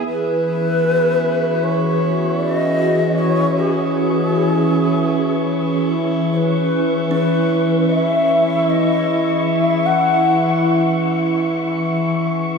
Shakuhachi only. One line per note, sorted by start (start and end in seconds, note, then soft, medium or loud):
0.08 1.65 B4 loud
1.63 2.42 C#5 medium
2.41 2.55 D5 loud
2.55 3.20 D#5 loud
3.18 3.60 C#5 loud
3.58 5.94 G#4 medium
6.32 6.37 C#5 medium
6.36 7.06 B4 medium
7.12 7.91 B4 medium
7.90 8.71 E5 medium
8.69 9.49 D#5 medium
9.48 9.87 E5 loud
9.86 10.64 F#5 loud